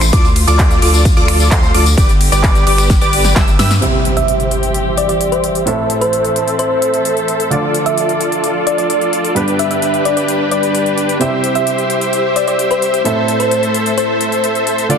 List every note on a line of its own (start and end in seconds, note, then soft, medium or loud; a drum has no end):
0.00 0.11 A1 loud
0.00 1.94 A3 medium
0.00 finger snap medium
0.00 closed hi-hat medium
0.00 tambourine medium
0.13 0.45 D2 medium
0.13 3.79 D3 medium
0.13 0.27 F4 medium
0.13 1.96 F4 medium
0.13 0.27 A4 medium
0.13 0.27 D5 medium
0.13 0.27 D6 medium
0.13 kick loud
0.13 closed hi-hat medium
0.13 ride medium
0.13 tambourine medium
0.25 tambourine soft
0.36 open hi-hat loud
0.36 ride medium
0.47 0.80 D2 loud
0.47 0.79 F4 medium
0.47 0.79 A4 medium
0.47 0.79 D5 loud
0.47 0.79 D6 loud
0.47 closed hi-hat medium
0.47 tambourine medium
0.59 kick loud
0.59 clap loud
0.59 closed hi-hat medium
0.59 ride medium
0.59 tambourine medium
0.71 closed hi-hat soft
0.71 tambourine soft
0.82 1.14 D2 loud
0.82 1.04 F4 medium
0.82 1.04 A4 medium
0.82 1.04 D5 medium
0.82 1.04 D6 medium
0.82 open hi-hat medium
0.82 ride medium
0.94 closed hi-hat medium
0.94 tambourine medium
1.05 kick loud
1.05 closed hi-hat medium
1.05 ride medium
1.05 tambourine medium
1.17 1.49 D2 loud
1.17 1.49 F4 loud
1.17 1.49 A4 medium
1.17 1.49 D5 loud
1.17 1.49 D6 loud
1.17 tambourine soft
1.28 finger snap medium
1.28 open hi-hat loud
1.28 ride medium
1.40 closed hi-hat medium
1.40 tambourine medium
1.51 1.72 D2 loud
1.51 1.72 A4 medium
1.51 1.72 C5 medium
1.51 1.72 C6 medium
1.51 kick loud
1.51 clap loud
1.51 closed hi-hat medium
1.51 ride medium
1.51 tambourine medium
1.63 tambourine soft
1.74 1.95 D2 loud
1.74 1.88 F4 loud
1.74 1.88 A4 loud
1.74 1.88 D5 loud
1.74 1.88 D6 loud
1.74 open hi-hat medium
1.74 ride medium
1.86 closed hi-hat medium
1.86 tambourine medium
1.97 2.30 G1 loud
1.97 3.80 B3 medium
1.97 2.11 G4 medium
1.97 3.80 G4 medium
1.97 2.11 B4 medium
1.97 2.11 D5 medium
1.97 2.11 D6 medium
1.97 kick loud
1.97 closed hi-hat medium
1.97 ride medium
1.97 tambourine medium
2.09 closed hi-hat soft
2.09 tambourine soft
2.21 open hi-hat loud
2.21 ride medium
2.32 2.64 G1 loud
2.32 2.64 G4 medium
2.32 2.64 B4 medium
2.32 2.64 D5 loud
2.32 2.64 D6 loud
2.32 closed hi-hat medium
2.32 tambourine medium
2.43 kick loud
2.43 clap loud
2.43 closed hi-hat medium
2.43 ride medium
2.43 tambourine medium
2.55 closed hi-hat soft
2.55 tambourine soft
2.67 2.99 G1 loud
2.67 2.89 G4 medium
2.67 2.89 B4 medium
2.67 2.89 D5 medium
2.67 2.89 D6 medium
2.67 open hi-hat medium
2.67 ride medium
2.78 finger snap medium
2.78 closed hi-hat medium
2.78 tambourine medium
2.90 kick loud
2.90 snare medium
2.90 closed hi-hat medium
2.90 ride medium
2.90 tambourine medium
3.01 3.34 G1 loud
3.01 3.33 G4 loud
3.01 3.33 B4 medium
3.01 3.33 D5 loud
3.01 3.33 D6 loud
3.01 closed hi-hat soft
3.01 tambourine soft
3.13 open hi-hat loud
3.13 ride medium
3.25 snare medium
3.25 closed hi-hat medium
3.25 tambourine medium
3.36 3.57 G1 loud
3.36 3.50 G4 loud
3.36 3.50 B4 medium
3.36 3.50 E6 loud
3.36 kick loud
3.36 snare medium
3.36 clap loud
3.36 closed hi-hat medium
3.36 ride medium
3.48 closed hi-hat soft
3.48 tambourine soft
3.59 3.80 G2 loud
3.59 3.73 G4 medium
3.59 3.73 B4 medium
3.59 3.73 E5 medium
3.59 3.73 E6 medium
3.59 snare loud
3.59 open hi-hat medium
3.59 ride medium
3.71 snare medium
3.71 closed hi-hat medium
3.71 tambourine medium
3.81 5.63 C3 medium
3.81 7.48 E3 medium
3.81 5.64 C4 medium
3.81 5.65 C4 medium
3.81 5.64 E4 medium
3.81 5.64 G4 medium
3.81 5.65 G4 medium
3.81 5.64 G4 medium
3.81 5.64 C5 medium
3.81 5.64 E5 medium
3.81 5.65 E5 medium
3.81 closed hi-hat medium
3.81 impact medium
4.05 closed hi-hat medium
4.17 4.36 E5 medium
4.17 closed hi-hat soft
4.28 closed hi-hat medium
4.40 closed hi-hat soft
4.51 closed hi-hat medium
4.63 closed hi-hat soft
4.74 closed hi-hat medium
4.98 5.05 D5 medium
4.98 closed hi-hat medium
5.09 5.17 D5 medium
5.09 closed hi-hat soft
5.21 closed hi-hat medium
5.32 5.51 C5 medium
5.32 closed hi-hat soft
5.44 closed hi-hat medium
5.55 closed hi-hat soft
5.66 7.48 A2 medium
5.66 7.48 C4 medium
5.66 7.50 C4 medium
5.66 7.49 E4 medium
5.66 7.49 A4 medium
5.66 9.32 A4 medium
5.66 7.49 A4 medium
5.66 7.49 C5 medium
5.66 7.49 E5 medium
5.66 closed hi-hat medium
5.90 closed hi-hat medium
6.01 6.20 C5 medium
6.01 closed hi-hat soft
6.13 closed hi-hat medium
6.25 closed hi-hat soft
6.36 closed hi-hat medium
6.48 closed hi-hat soft
6.59 7.05 C5 medium
6.59 closed hi-hat medium
6.82 closed hi-hat medium
6.94 closed hi-hat soft
7.05 closed hi-hat medium
7.17 closed hi-hat soft
7.28 closed hi-hat medium
7.40 closed hi-hat soft
7.50 9.33 D3 medium
7.50 9.34 F3 medium
7.50 9.33 A3 medium
7.50 9.33 D4 medium
7.50 11.17 D4 medium
7.50 9.33 F4 medium
7.50 9.34 F4 medium
7.50 9.33 A4 medium
7.50 9.33 D5 medium
7.50 9.34 D5 medium
7.50 closed hi-hat medium
7.74 closed hi-hat medium
7.86 8.05 E5 medium
7.86 closed hi-hat soft
7.98 closed hi-hat medium
8.09 closed hi-hat soft
8.21 closed hi-hat medium
8.32 closed hi-hat soft
8.44 closed hi-hat medium
8.67 8.74 D5 medium
8.67 closed hi-hat medium
8.78 8.86 D5 medium
8.78 closed hi-hat soft
8.90 closed hi-hat medium
9.01 closed hi-hat soft
9.13 closed hi-hat medium
9.25 closed hi-hat soft
9.35 11.17 G2 medium
9.35 11.18 G3 medium
9.35 13.02 G3 medium
9.35 11.18 B3 medium
9.35 11.18 D4 medium
9.35 11.18 G4 medium
9.35 11.18 B4 medium
9.35 11.19 B4 medium
9.35 closed hi-hat medium
9.48 closed hi-hat soft
9.59 9.67 E5 medium
9.59 closed hi-hat medium
9.71 9.78 E5 medium
9.71 closed hi-hat soft
9.82 closed hi-hat medium
9.94 closed hi-hat soft
10.05 10.13 D5 medium
10.05 closed hi-hat medium
10.17 10.24 D5 medium
10.17 closed hi-hat soft
10.28 closed hi-hat medium
10.51 10.86 D5 medium
10.51 closed hi-hat medium
10.63 closed hi-hat soft
10.75 closed hi-hat medium
10.86 closed hi-hat soft
10.98 closed hi-hat medium
11.09 closed hi-hat soft
11.19 13.02 C3 medium
11.19 13.02 C4 medium
11.19 13.03 E4 medium
11.19 13.04 E4 medium
11.19 13.03 G4 medium
11.19 13.03 C5 medium
11.19 13.04 C5 medium
11.19 13.02 E5 medium
11.19 13.03 E5 medium
11.19 closed hi-hat medium
11.44 closed hi-hat medium
11.55 11.74 E5 medium
11.55 closed hi-hat soft
11.67 closed hi-hat medium
11.78 closed hi-hat soft
11.90 closed hi-hat medium
12.01 closed hi-hat soft
12.13 closed hi-hat medium
12.36 12.43 D5 medium
12.36 closed hi-hat medium
12.48 12.55 D5 medium
12.48 closed hi-hat soft
12.59 closed hi-hat medium
12.71 12.90 C5 medium
12.71 closed hi-hat soft
12.82 closed hi-hat medium
12.94 closed hi-hat soft
13.04 14.87 A2 medium
13.04 14.88 A3 medium
13.04 14.87 C4 medium
13.04 14.87 E4 medium
13.04 14.88 E4 medium
13.04 14.87 A4 medium
13.04 14.87 C5 medium
13.04 14.88 C5 medium
13.04 14.87 E5 medium
13.04 14.88 E5 medium
13.04 closed hi-hat medium
13.28 closed hi-hat medium
13.40 13.59 C5 medium
13.40 closed hi-hat soft
13.51 closed hi-hat medium
13.63 closed hi-hat soft
13.74 closed hi-hat medium
13.86 closed hi-hat soft
13.98 14.44 C5 medium
13.98 closed hi-hat medium
14.21 closed hi-hat medium
14.32 closed hi-hat soft
14.44 closed hi-hat medium
14.55 closed hi-hat soft
14.67 closed hi-hat medium
14.78 closed hi-hat soft
14.89 14.98 D3 medium
14.89 14.98 A3 medium
14.89 14.98 D4 medium
14.89 14.98 F4 medium
14.89 14.98 A4 medium
14.89 14.98 D5 medium
14.89 closed hi-hat medium